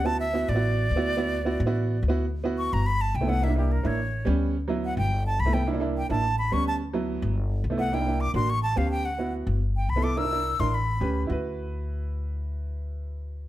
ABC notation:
X:1
M:4/4
L:1/16
Q:1/4=214
K:D
V:1 name="Flute"
a2 e4 d8- d2- | d12 z4 | z4 c'2 _b2 =b2 a2 g2 f2 | e2 G2 _B2 c6 z4 |
z4 f2 g4 a2 b2 g2 | z4 g2 a4 b2 c'2 a2 | z12 z2 f2 | g4 d'2 =c'2 ^c'2 a2 =f2 g2 |
f4 z6 g2 b2 d'2 | e'6 =c'2 b6- b z | z16 | z16 |]
V:2 name="Upright piano"
[B,EF]3 z [B,EF]2 z [B,EF]4 z2 [B,EF]2 z | [B,EF]3 z [B,EF]2 z [B,EF]4 z2 [B,EF]2 z | z2 [B,EF]6 z4 z [A,B,E] [A,B,E] z | [_B,DE] [B,DE] [B,DE]3 z [B,DE]2 z4 [G,=B,C]4 |
z2 [F,B,E]6 z4 z [A,B,E] [A,B,E] z | [_B,DE] [B,DE] [B,DE]3 z [B,DE]2 z4 [G,=B,C]4 | z2 [F,B,E]6 z4 z [A,B,E] [A,B,E] z | [_B,DE] [B,DE] [B,DE]3 z [B,DF]2 z4 [=B,CG]4 |
z2 [B,EF]6 z4 z [B,EA] [B,EA] z | [DE_B] [DEB] [DEB]3 z [DEB]2 z4 [CG=B]4 | [EFB]16- | [EFB]16 |]
V:3 name="Upright bass" clef=bass
D,,6 A,,,6 D,,4- | D,,6 A,,,6 D,,4- | D,,6 G,,,6 =C,,4- | =C,,6 A,,,6 D,,4- |
D,,6 G,,,6 =C,,4- | =C,,6 A,,,6 D,,4- | D,,6 G,,,6 =C,,4- | =C,,6 A,,,6 D,,4- |
D,,6 G,,,6 =C,,4- | =C,,6 A,,,6 D,,4 | D,,16- | D,,16 |]